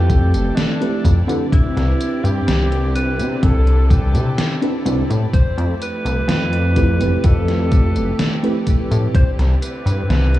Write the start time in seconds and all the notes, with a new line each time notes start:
Already playing: F2 F3 A3 C4 E4 G4 A4 B4 D5
0.10 kick, closed hi-hat, tambourine
0.34 F1, closed hi-hat, tambourine
0.56 D4, snare, closed hi-hat, tambourine
0.80 A3 C4 E4 G4 B4, closed hi-hat
1.05 F2, kick, closed hi-hat, tambourine
1.27 D3 C4 D4 E4 G4 B4, closed hi-hat, tambourine
1.52 C2 D3 C4 E4 G4, kick, closed hi-hat, tambourine
1.76 C2, snare, closed hi-hat
2.01 closed hi-hat, tambourine
2.24 G2 G4, closed hi-hat, tambourine
2.47 C2, snare, closed hi-hat, tambourine
2.72 closed hi-hat
2.95 B4, closed hi-hat, tambourine
3.19 C3, closed hi-hat, tambourine
3.43 C2 A4, kick, closed hi-hat, tambourine
3.67 closed hi-hat
3.90 G4, kick, closed hi-hat, tambourine
4.14 C3, closed hi-hat, tambourine
4.38 snare, closed hi-hat, tambourine
4.61 C4 D4 E4 G4 B4, closed hi-hat
4.85 C2 C4 D4 E4 G4 B4, closed hi-hat, tambourine
5.10 A2, closed hi-hat, tambourine
5.33 F2 F3 A3 G4 C5, kick, closed hi-hat, tambourine
5.58 F2, closed hi-hat
5.82 B4, closed hi-hat, tambourine
6.05 C2, closed hi-hat, tambourine
6.28 F2, snare, closed hi-hat, tambourine
6.53 closed hi-hat
6.76 A3 C4 E4 G4 B4, kick, closed hi-hat, tambourine
6.99 F1 A3 C4 E4 G4 B4, closed hi-hat, tambourine
7.24 F2 A4, kick, closed hi-hat, tambourine
7.48 snare, closed hi-hat
7.72 kick, closed hi-hat, tambourine
7.96 F1, closed hi-hat, tambourine
8.19 snare, closed hi-hat, tambourine
8.43 A3 C4 E4 G4 B4, closed hi-hat
8.67 kick, closed hi-hat, tambourine
8.91 A2, closed hi-hat, tambourine
9.15 C2 D3 C4 E4 C5, kick, closed hi-hat, tambourine
9.39 C2, snare, closed hi-hat
9.62 B4, closed hi-hat, tambourine
9.86 G2, closed hi-hat, tambourine
10.09 C2, snare, closed hi-hat, tambourine
10.34 closed hi-hat